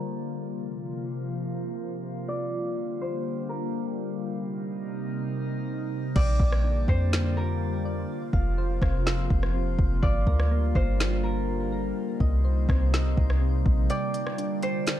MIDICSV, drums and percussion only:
0, 0, Header, 1, 2, 480
1, 0, Start_track
1, 0, Key_signature, -2, "major"
1, 0, Tempo, 483871
1, 348, Time_signature, 4, 2, 24, 8
1, 14877, End_track
2, 0, Start_track
2, 0, Title_t, "Drums"
2, 6108, Note_on_c, 9, 36, 109
2, 6108, Note_on_c, 9, 49, 92
2, 6207, Note_off_c, 9, 36, 0
2, 6207, Note_off_c, 9, 49, 0
2, 6346, Note_on_c, 9, 36, 88
2, 6445, Note_off_c, 9, 36, 0
2, 6472, Note_on_c, 9, 37, 97
2, 6572, Note_off_c, 9, 37, 0
2, 6826, Note_on_c, 9, 36, 93
2, 6925, Note_off_c, 9, 36, 0
2, 7075, Note_on_c, 9, 38, 115
2, 7174, Note_off_c, 9, 38, 0
2, 8265, Note_on_c, 9, 36, 86
2, 8364, Note_off_c, 9, 36, 0
2, 8746, Note_on_c, 9, 36, 96
2, 8754, Note_on_c, 9, 37, 101
2, 8845, Note_off_c, 9, 36, 0
2, 8854, Note_off_c, 9, 37, 0
2, 8995, Note_on_c, 9, 38, 119
2, 9095, Note_off_c, 9, 38, 0
2, 9229, Note_on_c, 9, 36, 97
2, 9329, Note_off_c, 9, 36, 0
2, 9355, Note_on_c, 9, 37, 91
2, 9454, Note_off_c, 9, 37, 0
2, 9708, Note_on_c, 9, 36, 102
2, 9807, Note_off_c, 9, 36, 0
2, 9948, Note_on_c, 9, 36, 99
2, 10047, Note_off_c, 9, 36, 0
2, 10186, Note_on_c, 9, 36, 88
2, 10285, Note_off_c, 9, 36, 0
2, 10313, Note_on_c, 9, 37, 100
2, 10412, Note_off_c, 9, 37, 0
2, 10667, Note_on_c, 9, 36, 89
2, 10766, Note_off_c, 9, 36, 0
2, 10916, Note_on_c, 9, 38, 121
2, 11015, Note_off_c, 9, 38, 0
2, 12105, Note_on_c, 9, 36, 86
2, 12204, Note_off_c, 9, 36, 0
2, 12586, Note_on_c, 9, 36, 91
2, 12594, Note_on_c, 9, 37, 97
2, 12685, Note_off_c, 9, 36, 0
2, 12693, Note_off_c, 9, 37, 0
2, 12835, Note_on_c, 9, 38, 122
2, 12934, Note_off_c, 9, 38, 0
2, 13069, Note_on_c, 9, 36, 98
2, 13168, Note_off_c, 9, 36, 0
2, 13193, Note_on_c, 9, 37, 97
2, 13292, Note_off_c, 9, 37, 0
2, 13547, Note_on_c, 9, 36, 101
2, 13647, Note_off_c, 9, 36, 0
2, 13786, Note_on_c, 9, 42, 71
2, 13886, Note_off_c, 9, 42, 0
2, 14028, Note_on_c, 9, 42, 85
2, 14127, Note_off_c, 9, 42, 0
2, 14152, Note_on_c, 9, 37, 94
2, 14251, Note_off_c, 9, 37, 0
2, 14269, Note_on_c, 9, 42, 78
2, 14368, Note_off_c, 9, 42, 0
2, 14508, Note_on_c, 9, 42, 77
2, 14607, Note_off_c, 9, 42, 0
2, 14748, Note_on_c, 9, 42, 81
2, 14756, Note_on_c, 9, 38, 120
2, 14847, Note_off_c, 9, 42, 0
2, 14855, Note_off_c, 9, 38, 0
2, 14877, End_track
0, 0, End_of_file